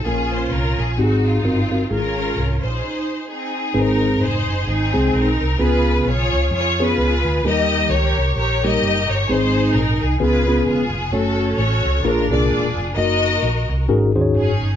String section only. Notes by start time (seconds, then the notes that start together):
0.05 C#4 F4 G#4
0.32 C5
0.51 A#4
0.78 G#4
0.98 C4 D#4 F#4
1.24 C4 F4
1.91 C#4 F4 A#4
2.64 D#4 G#4 C5
3.30 C4 D#4 G#4
3.75 D#4 A#4
4.22 D#4 G#4 C5
4.67 C4 D#4 G#4
5.14 D#4 A#4
5.61 F4 G#4 B4
6.07 F4 G#4 C#5
6.54 F4 G#4 C#5
6.81 F4 G#4 B4
7.46 G4 A#4 D#5
7.90 G4 A#4 C#5
8.37 G4 A#4 C#5
8.64 G4 A#4 D#5
9.10 C#5
9.28 D#4 G#4 C5
9.74 A#4
10.02 G#4
10.21 F4 G#4 B4
10.67 B3 F4 G#4
11.12 C#4 F#4 A4
11.58 F#4 A4 C#5
12.04 D4 F4 A#4
12.32 F4 G#4 D5
12.95 F#4 A#4 D#5
14.36 C#4 D#4 G#4